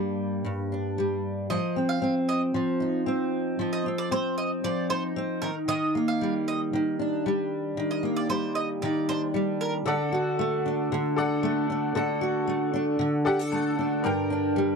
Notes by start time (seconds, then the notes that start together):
Already playing: G2 G3 A#3 D4
0.44 G2
0.72 D4
0.98 G3
1.50 F3 D#5
1.76 C4
1.89 F5
2.02 C4
2.29 D#5
2.54 F3
2.80 D#4
3.06 C4
3.59 F3
3.73 D#5
3.86 C4
3.98 D5
4.11 C4 C5
4.38 D#5
4.64 F3 D5
4.90 D#4 C5
5.16 C4
5.42 D#3 A#4
5.68 D#3 D#5
5.95 A#3
6.08 F5
6.21 G3
6.48 D#5
6.73 D#3
6.99 D4
7.26 G3
7.77 D#3
7.91 D#5
8.03 A#3
8.17 D5
8.29 G3 C5
8.55 D#5
8.82 D#3 D5
9.09 D4 C5
9.34 G3
9.61 A#4
9.85 D3 A4 D5 F#5
10.12 F#4
10.39 A3
10.66 D4
10.92 D3
11.16 A4 D5 F#5
11.43 A3
11.70 D4
11.95 D3 A4 D5 F#5
12.21 F#4
12.47 A3
12.74 D4
12.99 D3
13.25 G4 A4 D5 F#5
13.39 A4
13.52 A3 A5
13.79 D4
14.03 G2 A#4 D5 G5
14.30 D4
14.56 G3